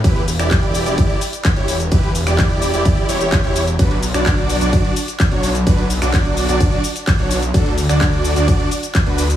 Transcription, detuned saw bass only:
X:1
M:4/4
L:1/16
Q:1/4=128
K:Edor
V:1 name="Detuned saw bass" clef=bass
E,,,3 E,,,4 E,,,3 z3 E,,,3 | E,,,3 E,,,4 E,,,3 E,,,3 E,,,3 | B,,,3 B,,,4 B,,,3 z3 B,,,3 | B,,,3 B,,,4 B,,,3 z3 B,,,3 |
D,,3 D,,4 D,,3 z3 D,,3 |]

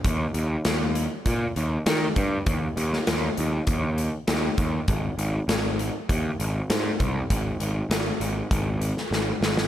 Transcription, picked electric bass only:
X:1
M:4/4
L:1/8
Q:1/4=99
K:Eb
V:1 name="Picked electric bass" clef=bass
E,, E,, E,,2 B,, E,, E, G,, | E,, E,, E,, E,, E,,2 E,, E,, | A,,, A,,, A,,,2 E,, A,,, A,, C,, | A,,, A,,, A,,, A,,, A,,,2 A,,, A,,, |]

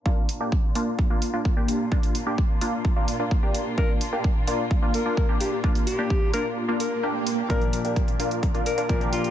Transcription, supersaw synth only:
X:1
M:4/4
L:1/16
Q:1/4=129
K:Bb
V:1 name="Supersaw synth"
[B,DF]2 z [B,DG] z2 [B,DF]3 [B,DF]2 [B,DF]2 [B,DG]3 | [B,DF]2 z [B,DG] z2 [B,DF]3 [B,DF]2 [B,DF]2 [B,DG]3 | [B,DF]2 z [B,DG] z2 [B,DF]3 [B,DF]2 [B,DF]2 [B,DG]3 | [B,DF]2 z [B,DG] z2 [B,DF]3 [B,DF]2 z [B,DG]4 |
[B,DF]2 z [B,DG] z2 [B,DF]3 [B,DF]2 [B,DF]2 [B,DG]3 |]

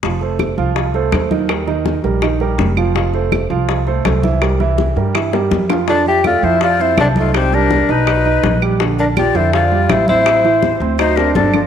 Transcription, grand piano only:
X:1
M:4/4
L:1/8
Q:1/4=164
K:F
V:1 name="Grand piano"
[F,Ff] [A,Ac]2 [F,Ff]2 [A,Ac] A, [_E,_E_e] | [G,GB] [_E,_E_e]2 [G,GB] [E,Ee] [G,GB]2 [F,Ff] | [F,Ff] [A,Ac]2 [F,Ff]2 [A,Ac] [A,Ac] [E,Ee] | [G,GB] [E,Ee]2 [G,GB] [E,Ee] [G,GB]2 [F,Ff] |
[F,F]2 [A,A] [F,F]2 [Cc]2 [_E_e]- | [_E_e] [G,G]2 [Ee] [^F,^F] [^D^d]2 [G,G] | [D,D]2 [F,F] [D,D]2 [G,G]2 [Cc]- | [Cc] [E,E]2 [Cc] [^F,^F] [Cc]2 [=F,=F] |]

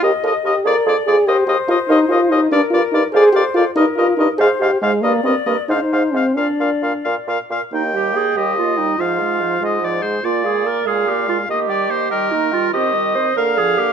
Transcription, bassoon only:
X:1
M:6/8
L:1/8
Q:3/8=96
K:Eblyd
V:1 name="Bassoon" clef=bass
E,, E,, E,, F,, F,, F,, | E,, E,, E,, E,, E,, E,, | [K:Eb] G,, G,, G,, F,, F,, F,, | G,, G,, G,, A,, A,, A,, |
G,, G,, G,, A,, A,, A,, | B,, B,, B,, B,, B,, B,, | E,,3 E,,3 | A,,3 A,,3 |
B,,3 B,,3 | E,3 E,3 | E,3 D,3 |]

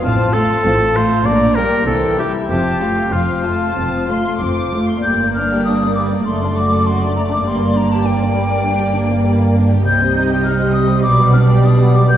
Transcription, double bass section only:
X:1
M:4/4
L:1/8
Q:1/4=99
K:F
V:1 name="Double bass section" clef=bass
A,,,2 A,,,2 B,,,2 C,,2 | F,,,2 F,,,2 F,,,2 F,,,2 | [K:Gm] G,,,4 ^F,,,4 | G,,,8 |
C,,4 =B,,,4 |]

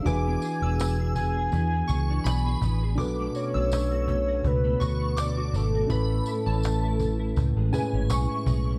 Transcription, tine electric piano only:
X:1
M:4/4
L:1/8
Q:"Swing 16ths" 1/4=82
K:A
V:1 name="Tine electric piano"
[DFGB]8 | [DFAB]8 | [CEB]4- [CEB] [CEGB]3 |]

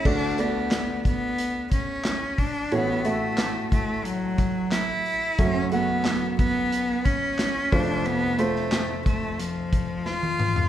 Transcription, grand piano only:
X:1
M:4/4
L:1/8
Q:1/4=90
K:D
V:1 name="Grand piano"
[A,Fd] [A,Fd]4 z3 | [A,Fc] [A,Fe]4 z3 | [A,Fe] [A,Ff]4 z2 [A,=F=c]- | [A,=F=c] [A,Fc]4 z3 |]
V:2 name="Grand piano" clef=bass
[D,,D,]8 | [A,,,A,,]8 | [F,,,F,,]6- [F,,,F,,] [=F,,,=F,,]- | [=F,,,=F,,]6- [F,,,F,,] z |]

